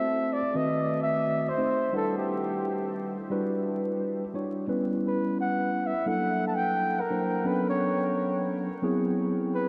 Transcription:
Already playing: tine electric piano A3 C4 E4 F#4 C5, flugelhorn E5
0.33 flugelhorn D5
0.54 tine electric piano D#3 A3 C4 F#4 B4, flugelhorn D#5
1.03 flugelhorn E5
1.49 flugelhorn C5
1.57 tine electric piano A3 C4 D#4 F#4 C5
1.93 tine electric piano G3 D4 E4 B4 F#5, flugelhorn A4
2.18 flugelhorn G4
3.30 tine electric piano G3 D4 E4 F#4 B4
4.34 tine electric piano G3 D4 E4 F#4 C#5
4.68 tine electric piano G3 B3 C#4 E4 B4
5.07 flugelhorn B4
5.40 flugelhorn F#5
5.87 flugelhorn E5
6.06 tine electric piano F#3 A#3 D4 E4 A4, flugelhorn F#5
6.47 flugelhorn A5
6.55 flugelhorn G5
7.01 flugelhorn A#4
7.10 tine electric piano F#3 A#3 D4 E4 C5
7.44 tine electric piano F#3 B3 C#4 D4 A4, flugelhorn B4
7.69 flugelhorn C#5
8.82 tine electric piano F#3 B3 C4 E4 G#4
9.54 flugelhorn B4

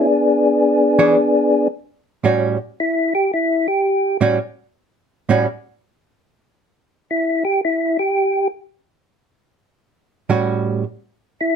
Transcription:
Already playing: tonewheel organ B3 D4 G#4
0.99 hollow-body jazz guitar E3 D4 G#4 C#5
2.24 hollow-body jazz guitar A2 G3 C#4 F#4
2.80 tonewheel organ E4
3.15 tonewheel organ G4
3.34 tonewheel organ E4
3.68 tonewheel organ G4
4.21 hollow-body jazz guitar A2 G3 C#4 F#4
5.29 hollow-body jazz guitar A2 G3 C#4 F#4
7.11 tonewheel organ E4
7.45 tonewheel organ G4
7.65 tonewheel organ E4
7.99 tonewheel organ G4
10.30 hollow-body jazz guitar A2 G3 C#4 F#4
11.41 tonewheel organ E4

